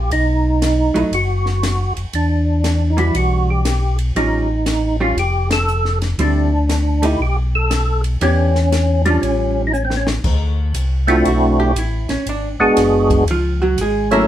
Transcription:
Already playing: G4
0.11 B1 D#4, ride
0.62 snare, hi-hat pedal, ride
0.94 B1 F#3 A3 D#4 E4, ride
1.11 F#1 F#4, ride
1.46 snare
1.63 snare, hi-hat pedal, ride
1.96 F#1, ride
2.13 E2 D4, ride
2.64 snare, hi-hat pedal, ride
2.90 D#4
2.97 E3 G3 D4 E4 F#4, ride
3.14 B1 F#4, ride
3.50 G4
3.65 snare, hi-hat pedal, ride
3.99 ride
4.15 A1 G3 C#4 D#4 F4, ride
4.66 snare, hi-hat pedal, ride
5.00 G3 C#4 F4
5.16 F1 G4, ride
5.51 A4, snare, ride
5.68 hi-hat pedal
5.85 snare
6.02 snare, ride
6.18 D2 D3 G3 C4 D4 E4, ride
6.69 snare, hi-hat pedal, ride
7.02 A3 D#4 E4 G4, ride
7.20 B1 G4
7.55 A4
7.71 snare, hi-hat pedal, ride
8.04 ride
8.21 E2 E3 B3 C#4 D4 G4, ride
8.55 snare
8.72 snare, hi-hat pedal, ride
9.06 G3 C#4 D4 F4, ride
9.22 A1 C#4, ride
9.67 D#4
9.73 C#4, hi-hat pedal
9.85 C4
9.90 snare
9.97 C#4
10.07 snare
10.24 D2, kick, crash
10.74 C2, hi-hat pedal, ride
11.07 A3 C4 D4 E4 F4 F#4, ride
11.25 B1 F#4, ride
11.60 G4
11.75 A1 E4, hi-hat pedal, ride
12.09 A1 C#4, snare, ride
12.26 G#1 D4, ride
12.60 G#1 G#3 B3 D4 F#4 G#4
12.76 F#1, snare, hi-hat pedal, ride
13.10 kick, ride
13.27 C#2 F3, ride
13.31 F4
13.62 F#3 F#4
13.77 G#1 G#4, hi-hat pedal, ride
13.82 G#3
14.11 F#3 A3 A#3 C#4 E4 A4 A#4, ride

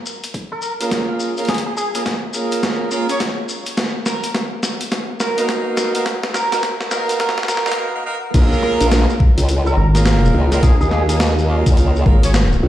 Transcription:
0.06 shekere
0.24 closed hi-hat, shekere
0.34 kick, closed hi-hat, shekere
0.52 A#4
0.62 shekere
0.81 A#3 C#4 F4 G#4 A#4, closed hi-hat, shekere
0.91 kick, snare, closed hi-hat, shekere
1.20 shekere
1.37 A#3 C#4 F4 G#4 A#4, closed hi-hat, shekere
1.45 snare, closed hi-hat, shekere
1.49 G#4, kick, closed hi-hat
1.54 closed hi-hat
1.58 closed hi-hat
1.66 G#4
1.77 G#4, shekere
1.95 A#3 C#4 F4 G#4 A#4, closed hi-hat, shekere
2.06 kick, snare, closed hi-hat, shekere
2.33 A#3 C#4 F4 G#4 A#4, shekere
2.52 closed hi-hat, shekere
2.63 kick, snare, closed hi-hat, shekere
2.91 A#3 C#4 F4 G#4 A#4, shekere
3.09 C#4 F4 G#4 C#5, closed hi-hat, shekere
3.20 kick, snare, closed hi-hat, shekere
3.49 shekere
3.66 closed hi-hat, shekere
3.77 kick, snare, closed hi-hat, shekere
4.06 A#4, snare, shekere
4.23 closed hi-hat, shekere
4.34 kick, snare, closed hi-hat, shekere
4.63 snare, shekere
4.81 closed hi-hat, shekere
4.92 kick, snare, closed hi-hat, shekere
5.20 A#4, snare, shekere
5.38 A#3 B3 D#4 F#4 A#4, closed hi-hat, shekere
5.49 kick, snare, closed hi-hat, shekere
5.77 snare, shekere
5.95 A#3 B3 D#4 F#4 A#4, closed hi-hat, shekere
6.06 kick, snare, closed hi-hat, shekere
6.23 snare
6.34 A#4, snare, shekere
6.52 A#3 B3 D#4 F#4 A#4, snare, closed hi-hat, shekere
6.63 kick, snare, closed hi-hat, shekere
6.81 snare
6.91 A#3 B3 D#4 F#4 A#4, snare, shekere
7.09 closed hi-hat, shekere
7.19 A#4, kick, snare, closed hi-hat, shekere
7.29 snare
7.38 snare
7.43 snare
7.48 A#4, snare, shekere
7.57 snare
7.66 A#3 B3 D#4 F#4 A#4, snare, shekere
7.72 snare, closed hi-hat
7.95 A#3 B3 D#4 F#4 A#4
8.06 A#3 B3 D#4 F#4 A#4
8.34 A#1 A#3 C#4 F4 G#4 A#4, kick, closed hi-hat, crash, shekere
8.53 shekere
8.62 A#4, snare
8.81 A#1, closed hi-hat, shekere
8.91 snare, closed hi-hat, shekere
9.10 shekere
9.20 kick
9.38 C#2, closed hi-hat, shekere
9.49 closed hi-hat, shekere
9.66 A#4, shekere
9.77 G#1
9.95 A#3 C#4 F4 G#4 A#4, snare, closed hi-hat, shekere
10.06 snare, closed hi-hat, shekere
10.25 shekere
10.34 C#2
10.52 A#3 C#4 F4 G#4 A#4, snare, closed hi-hat, shekere
10.63 A#1 G#4, kick, closed hi-hat, shekere
10.80 D#2 G#4, shekere
10.91 G#4, snare
11.09 A#3 C#4 F4 G#4 A#4, closed hi-hat, shekere
11.20 snare, closed hi-hat, shekere
11.39 shekere
11.49 A#3 C#4 F4 G#4 A#4
11.66 C#2, kick, closed hi-hat, shekere
11.77 closed hi-hat, shekere
11.96 shekere
12.06 G#1 A#3 C#4 F4 G#4 A#4, kick
12.23 C#4 F4 G#4 C#5, closed hi-hat, shekere
12.34 snare, closed hi-hat, shekere
12.52 shekere
12.63 C#2

